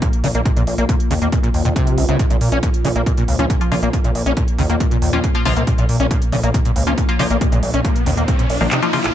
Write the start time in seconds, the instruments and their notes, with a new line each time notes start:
Already playing: synth drone A#2
0.02 acid bass A#2, kick, closed hi-hat
0.13 closed hi-hat
0.24 analog synth bass A#1, acid bass C#3, open hi-hat
0.35 analog synth bass A#1, acid bass A#3, closed hi-hat
0.45 acid bass A#2, kick, closed hi-hat
0.56 analog synth bass A#1, acid bass A#2, closed hi-hat
0.67 analog synth bass A#1, open hi-hat
0.78 analog synth bass A#1, acid bass A#3, closed hi-hat
0.89 acid bass A#2, kick, closed hi-hat
1.00 closed hi-hat
1.11 analog synth bass D#2, acid bass C#3, open hi-hat
1.22 analog synth bass D#2, acid bass A#3, closed hi-hat
1.32 acid bass A#2, kick, closed hi-hat
1.43 acid bass A#2, closed hi-hat
1.54 analog synth bass D#2, open hi-hat
1.65 analog synth bass D#2, acid bass A#2, closed hi-hat
1.76 acid bass C3, kick, closed hi-hat
1.87 closed hi-hat
1.98 analog synth bass C2, acid bass C#3, open hi-hat
2.09 analog synth bass C2, acid bass C#3, closed hi-hat
2.19 acid bass A#2, kick, closed hi-hat
2.30 analog synth bass A#1, acid bass A#2, closed hi-hat
2.41 analog synth bass A#2, open hi-hat
2.52 analog synth bass A#1, acid bass C#4, closed hi-hat
2.63 acid bass A#2, kick, closed hi-hat
2.74 closed hi-hat
2.85 analog synth bass A#1, acid bass C#3, open hi-hat
2.96 analog synth bass A#1, acid bass A#3, closed hi-hat
3.06 acid bass A#2, kick, closed hi-hat
3.17 acid bass A#2, closed hi-hat
3.28 analog synth bass C#2, open hi-hat
3.39 analog synth bass C#2, synth stab F3 A#3 F4, acid bass C#4, closed hi-hat
3.50 acid bass A#2, kick, closed hi-hat
3.61 synth stab F3 A#3 F4, closed hi-hat
3.72 analog synth bass A#1, acid bass C#3, synth stab F3 A#3 F4, open hi-hat
3.83 analog synth bass A#1, acid bass A#3, closed hi-hat
3.93 acid bass A#2, kick, closed hi-hat
4.04 analog synth bass A#1, acid bass A#2, closed hi-hat
4.15 analog synth bass A#1, open hi-hat
4.26 analog synth bass A#1, acid bass C#4, closed hi-hat
4.37 acid bass A#2, kick, closed hi-hat
4.48 closed hi-hat
4.59 analog synth bass D#2, acid bass C#3, open hi-hat
4.70 analog synth bass D#2, acid bass A#3, closed hi-hat
4.80 acid bass A#2, kick, closed hi-hat
4.91 acid bass A#2, closed hi-hat
5.02 analog synth bass D#2, open hi-hat
5.13 analog synth bass D#2, synth stab F3 A#3 F4, acid bass C#4, closed hi-hat
5.24 acid bass A#2, kick, closed hi-hat
5.35 synth stab F3 A#3 F4, closed hi-hat
5.45 analog synth bass C2, acid bass C#3, synth stab F3 A#3 F4, open hi-hat
5.56 analog synth bass C2, acid bass A#3, closed hi-hat
5.67 acid bass A#2, kick, closed hi-hat, riser
5.78 analog synth bass A#1, acid bass A#2, closed hi-hat
5.89 analog synth bass A#2, open hi-hat
6.00 analog synth bass A#1, acid bass C#4, closed hi-hat
6.11 acid bass A#2, kick, closed hi-hat
6.22 closed hi-hat
6.32 analog synth bass A#1, acid bass C#3, open hi-hat
6.43 analog synth bass A#1, acid bass A#3, closed hi-hat
6.54 acid bass A#2, kick, closed hi-hat
6.65 acid bass A#2, closed hi-hat
6.76 analog synth bass C#2, open hi-hat
6.87 analog synth bass C#2, synth stab F3 A#3 F4, acid bass C#4, closed hi-hat
6.98 acid bass A#2, kick, closed hi-hat
7.09 synth stab F3 A#3 F4, closed hi-hat
7.19 analog synth bass A#1, acid bass C#3, synth stab F3 A#3 F4, open hi-hat
7.30 analog synth bass A#1, acid bass A#3, closed hi-hat
7.41 acid bass A#2, kick, closed hi-hat
7.52 analog synth bass A#1, acid bass A#2, closed hi-hat
7.63 analog synth bass A#1, open hi-hat
7.74 analog synth bass A#1, acid bass C#4, closed hi-hat
7.85 acid bass A#2, kick, closed hi-hat
7.96 closed hi-hat
8.06 analog synth bass D#2, acid bass C#3, open hi-hat
8.17 analog synth bass D#2, acid bass A#3, closed hi-hat
8.28 acid bass A#2, kick, closed hi-hat
8.39 acid bass A#2, closed hi-hat
8.50 analog synth bass A#1, open hi-hat
8.61 analog synth bass A#1, acid bass D#3, synth stab F3 A#3 F4, open hi-hat
8.71 acid bass C3, clap, closed hi-hat
8.82 synth stab F3 A#3 F4, closed hi-hat
8.93 acid bass C#3, synth stab F3 A#3 F4, open hi-hat
9.04 acid bass A#1, clap, closed hi-hat